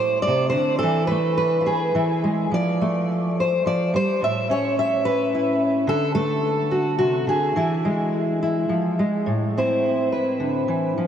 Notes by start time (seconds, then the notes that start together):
Already playing: A2 A3 E4 C5
0.22 D5
0.27 C3
0.50 D3 C5
0.79 A4
0.83 E3
1.07 A3 B4
1.37 B4
1.61 F4
1.66 G#4
1.95 E3 E4
2.24 G#3
2.52 F3 D5
2.81 A3
3.40 C5
3.66 F3 D5
3.94 G3 C5
4.21 A2 E5
4.50 C#4 C#5
4.79 E5
5.05 B4
5.35 E4
5.87 D3 A4
6.15 A3 A4
6.71 F#4
6.99 C3 F#4
7.27 D3 G#4
7.56 E3 E4
7.85 G#3
8.43 E4
8.69 F3
8.99 G#3
9.26 A2
9.58 C4 E4 C5
10.12 B4
10.40 D3
10.68 E3
10.98 F3